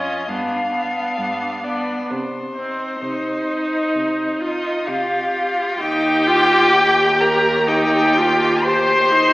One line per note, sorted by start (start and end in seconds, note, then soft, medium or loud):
0.00 0.16 F2 medium
0.00 0.29 C#4 soft
0.00 0.28 F4 soft
0.00 0.31 D#5 medium
0.29 1.05 G2 soft
0.29 0.73 B3 soft
0.29 0.72 D4 soft
0.29 1.66 F5 medium
0.74 1.62 B3 soft
0.74 1.62 D4 soft
1.18 1.97 G2 medium
1.64 2.09 B3 soft
1.64 2.09 D4 soft
1.64 2.12 D5 medium
2.10 2.88 C3 soft
2.10 4.41 C5 medium
2.56 2.92 C4 soft
2.56 3.46 D#4 soft
3.01 3.81 C3 soft
3.01 4.42 D#4 medium
3.48 4.40 D#4 soft
3.95 4.74 C3 soft
4.41 4.89 D#4 medium
4.41 4.89 F4 soft
4.41 4.89 D#5 medium
4.87 5.67 C3 soft
4.87 5.82 F4 medium
4.87 5.80 G4 soft
4.87 5.78 F5 medium
5.79 9.33 D#2 medium
5.79 6.29 D#4 medium
5.79 7.22 G4 loud
5.79 7.22 G5 loud
6.27 6.76 F4 medium
6.74 7.69 G4 medium
7.20 7.69 A#4 medium
7.20 7.69 A#5 medium
7.68 8.19 D#4 medium
7.68 8.65 G4 medium
7.68 8.66 G5 medium
8.17 8.68 F4 medium
8.64 9.13 G4 medium
8.64 9.33 C5 medium
8.64 9.33 C6 loud
9.12 9.33 D#4 medium